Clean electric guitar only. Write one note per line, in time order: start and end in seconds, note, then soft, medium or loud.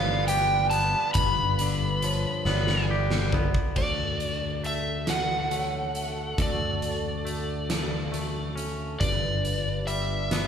0.00 0.73 G2 medium
0.00 1.16 D3 medium
0.00 1.60 F3 medium
0.00 0.72 B3 medium
0.29 2.47 G4 medium
0.73 2.45 B3 medium
1.17 3.34 G2 medium
1.61 3.76 D3 medium
2.04 3.78 F3 medium
2.46 3.33 B3 medium
2.91 3.78 G4 medium
3.34 3.78 B3 medium
3.77 5.95 D3 medium
4.64 5.50 A3 medium
5.51 7.24 A3 medium
6.39 8.57 D3 medium
7.25 8.11 A3 soft
8.12 9.00 A3 medium
8.56 9.00 C#4 medium
9.00 10.47 G2 medium
9.87 10.47 G3 medium
10.31 10.47 B3 medium